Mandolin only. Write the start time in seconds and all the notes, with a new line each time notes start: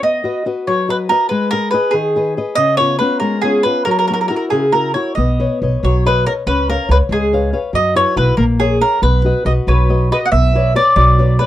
0.03 D#5
0.67 C#5
0.90 B4
1.09 A#4
1.29 B4
1.51 A#4
1.71 B4
1.91 G#4
2.55 D#5
2.77 C#5
2.99 B4
3.20 A#4
3.42 G#4
3.63 B4
3.85 A#4
3.91 A#4
3.99 A#4
4.08 A#4
4.13 A#4
4.21 A#4
4.28 A#4
4.36 A#4
4.50 G#4
4.72 A#4
4.94 C#5
5.15 D#5
5.85 C#5
6.07 B4
6.26 A#4
6.47 B4
6.70 A#4
6.92 B4
7.12 G#4
7.75 D#5
7.96 C#5
8.17 B4
8.37 A#4
8.60 G#4
8.81 A#4
9.03 B4
9.46 D#5
9.68 B4 C#5
10.12 B4 D#5
10.26 F#5
10.32 E5
10.76 D5
10.96 D5
11.39 B4